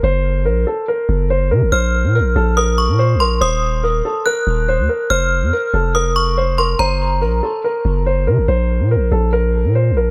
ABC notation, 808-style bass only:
X:1
M:4/4
L:1/16
Q:1/4=142
K:Bbm
V:1 name="808-style bass" clef=bass
G,,,4 B,,,2 z4 G,,,4 D, G,,, | B,,,3 B,,3/2 B,,,3/2 B,,,4- B,,, B,,2- B,,/2 B,,,2- B,,,/2 | E,,,6 z4 E,,,3 E,, z2 | F,,,3 F,, z2 F,,,8- F,,,2 |
G,,,4 B,,,2 z4 G,,,4 D, G,,, | B,,,3 B,,3/2 B,,,3/2 B,,,4- B,,, B,,2- B,,/2 B,,,2- B,,,/2 |]